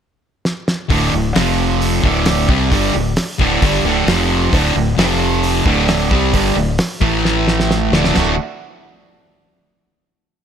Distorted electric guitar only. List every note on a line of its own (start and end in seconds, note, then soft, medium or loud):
0.89 1.10 D2 medium
0.89 1.11 A2 loud
0.89 1.13 D3 loud
1.11 1.30 D2 medium
1.11 1.31 A2 medium
1.35 2.02 F2 medium
1.35 2.03 C3 medium
1.35 2.03 F3 medium
2.02 2.48 D2 medium
2.02 2.48 A2 loud
2.02 2.48 D3 medium
2.48 2.70 C3 medium
2.48 2.71 G3 loud
2.48 2.71 C4 loud
2.70 2.93 G2 medium
2.70 2.93 D3 medium
2.70 2.94 G3 loud
2.94 3.12 D2 medium
2.94 3.13 A2 medium
3.38 3.61 D2 loud
3.38 3.62 A2 loud
3.38 3.61 D3 loud
3.62 3.84 G2 medium
3.62 3.84 D3 loud
3.62 3.85 G3 loud
3.84 4.07 D2 medium
3.84 4.07 A2 loud
3.84 4.07 D3 loud
4.07 4.50 F2 loud
4.07 4.51 C3 medium
4.07 4.52 F3 loud
4.51 4.73 D2 medium
4.51 4.74 A2 medium
4.51 4.75 D3 loud
4.75 4.93 D2 medium
4.75 4.94 A2 medium
4.97 5.65 F2 medium
4.97 5.65 C3 medium
4.97 5.66 F3 loud
5.65 6.11 D2 medium
5.65 6.11 A2 loud
5.65 6.12 D3 loud
6.11 6.32 C3 medium
6.11 6.32 G3 loud
6.11 6.33 C4 loud
6.32 6.55 G2 medium
6.32 6.56 D3 medium
6.32 6.56 G3 medium
6.56 6.75 D2 medium
6.56 6.75 A2 medium
7.01 7.91 A2 loud
7.01 7.92 E3 loud
7.01 7.92 A3 loud
7.92 8.14 D2 loud
7.92 8.15 A2 loud
7.92 8.15 D3 loud
8.15 8.33 D2 medium
8.15 8.34 A2 medium
8.15 8.34 D3 medium